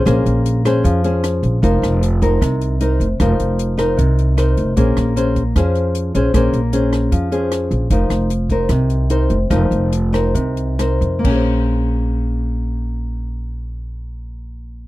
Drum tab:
CC |--------|--------|--------|--------|
HH |xxxxxxxx|xxxxxxxx|xxxxxxxx|xxxxxxxx|
SD |r--r--r-|-r--r---|r--r--r-|-r--r---|
BD |o---o---|o--oo---|o---o---|o--oo---|

CC |--------|--------|--------|x-------|
HH |xxxxxxxx|xxxxxxxx|xxxxxxxx|--------|
SD |r--r--r-|-r--r---|r--r--r-|--------|
BD |o---o---|o--oo---|o---o---|o-------|

CC |--------|
HH |--------|
SD |--------|
BD |--------|